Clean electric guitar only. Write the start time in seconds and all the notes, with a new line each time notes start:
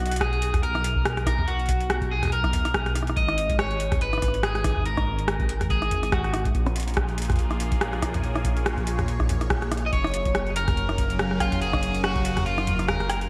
Already playing: F#4
0.21 G#4
0.63 A#4
1.27 A#4
1.48 F#4
2.11 G#4
2.33 A#4
3.17 D#5
3.59 C#5
4.02 B4
4.44 G#4
4.86 A#4
5.70 G#4
6.12 F#4
9.86 D#5
9.93 C#5
10.56 A#4
11.41 F4
11.62 G#4
12.04 F#4
12.46 F4
12.88 A#4